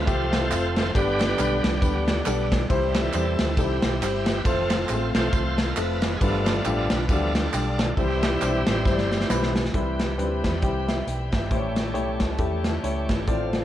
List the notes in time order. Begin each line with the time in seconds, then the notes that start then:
Already playing: F3 A3 C4
0.06 C2 A3 C4 F4 G4 A4 C5, kick, ride, tambourine
0.33 snare, ride, tambourine
0.50 F1 A3 C4 F4 C5, clap, ride, tambourine
0.76 snare, ride, tambourine
0.94 G1 G2 D3 G3 B3 D4 G4 A4 B4, kick, ride, tambourine
1.00 B4
1.20 snare, clap, ride, tambourine
1.39 B1 G3 B3 D4 B4, clap, ride, tambourine
1.64 C2 B3 D4 G4, snare, ride, tambourine
1.82 D2 G3 B3 D4 B4, kick, ride, tambourine
2.08 snare, ride, tambourine
2.26 B1 G3 B3 D4 A4, clap, ride, tambourine
2.51 kick, snare, ride, tambourine
2.69 C2 C3 E3 G3 C4 E4 C5, kick, ride, tambourine
2.94 C4 E4 A4, snare, clap, ride, tambourine
3.13 E2 G3 C4 E4 C5, clap, ride, tambourine
3.39 D2, snare, ride, tambourine
3.57 C2 G3 C4 D#4 E4 G4 A4, kick, ride, tambourine
3.63 E4
3.82 B1, snare, ride, tambourine
4.01 G1 G3 C4 E4 C5, clap, ride, tambourine
4.26 snare, ride, tambourine
4.39 B4
4.44 F1 F3 A3 C4 F4 A4 C5, kick, ride, tambourine
4.70 snare, clap, ride, tambourine
4.89 A1 G#3 C4 F4 C5, clap, ride, tambourine
4.94 A3
5.15 B1 F3 A3 C4 F4 A4 C5, snare, ride, tambourine
5.32 C2 A3 C4 F4 C5, kick, ride, tambourine
5.58 snare, ride, tambourine
5.71 A#4
5.77 F1 A3 C4 F4 A4 B4, clap, ride, tambourine
5.81 F4
6.02 snare, ride, tambourine
6.17 G#4
6.21 G1 G2 F3 G3 A3 B3 D4 F4 A4 B4, kick, ride, tambourine
6.46 snare, clap, ride, tambourine
6.65 A1 G3 D4 F4 G4, clap, ride, tambourine
6.90 B1 B4, snare, ride, tambourine
7.09 D2 F3 G3 A3 B3 D4 F4 F#4 A4, kick, ride, tambourine
7.16 G4
7.35 snare, ride, tambourine
7.53 B1 G3 D4 F4 G4, clap, ride, tambourine
7.79 snare, ride, tambourine
7.97 C2 C3 E3 G3 C4 E4 G4 B4, kick, ride, tambourine
8.04 C5
8.23 snare, clap, ride, tambourine
8.42 B1 G3 C4 D4 C5, clap, ride, tambourine
8.48 E4
8.67 A1 E3 G3 C4 E4 G4, snare, ride, tambourine
8.72 C5
8.85 G3 C4 E4 C5, kick, snare, tambourine
8.91 D5
8.98 snare
9.11 snare, tambourine
9.21 snare
9.29 B1 G3 C4 E4 B4, snare, clap, tambourine
9.43 snare
9.56 snare, tambourine
9.65 snare
9.74 C2 C3 E3 G3 C4 E4 G4 A4 B4 E5 G5 B5, kick, closed hi-hat
9.80 B4
9.99 snare, closed hi-hat
10.18 D2 G3 C4 D4 B4, closed hi-hat
10.24 E4
10.44 E2, kick, snare, closed hi-hat
10.62 C2 G3 C4 E4 G4, kick, closed hi-hat
10.88 E5, snare, closed hi-hat
11.07 B1 G5, closed hi-hat
11.32 G1 E5, kick, snare, closed hi-hat
11.51 A1 A2 A3 C#4 E4 G4 C5 C#5 A5, kick, closed hi-hat
11.57 C#5
11.76 snare, closed hi-hat
11.94 B1 A3 E4 G4 C#5, closed hi-hat
12.20 C#2, kick, snare, closed hi-hat
12.38 E2 A3 E4 G4 A4, kick, closed hi-hat
12.64 snare, closed hi-hat
12.83 C#2 A3 E4 G4 C#5, closed hi-hat
13.09 G1, kick, snare, closed hi-hat
13.27 A1 A2 D3 F3 C4 E4 F4 A4 C5 D5 F5 A5, kick, closed hi-hat
13.33 F4
13.53 snare, closed hi-hat